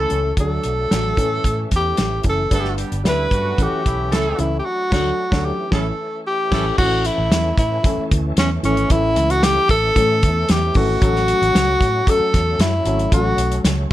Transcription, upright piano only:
0.09 E3 C#4 A4
0.38 F#3 D4 A4
0.91 F#3 D4 A4
1.17 E3 C#4 A4
2.24 E3 C#4 A4
2.50 G3 D4 B4
3.03 G3 D4 B4
3.58 E3 C#4 A4
4.38 E3 C#4 A4
4.91 F#3 D4 A4
5.31 F#3 D4 A4
5.71 E3 C#4 A4
6.51 E3 C#4 A4
6.79 E3 A3 C#4 A4
7.83 E3 A3 C#4 A4
8.63 E3 A3 C#4 A4
8.90 E3 A3 C#4 A4
9.95 E3 A3 C#4 A4
10.75 E3 A3 C#4 A4
11.01 F#3 A3 C#4 A4
12.06 F#3 A3 C#4 A4
12.85 F#3 A3 C#4 A4
13.11 F#3 A3 C#4 A4

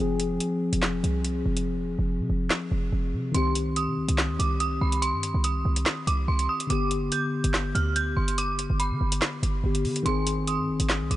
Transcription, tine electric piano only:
Already playing: F3
0.00 C4 G#4
3.32 D#3 C4
3.37 G4
6.67 D3 B3
6.72 G4
9.63 D3 B3 G4
10.03 D#3 C4
10.08 G#4

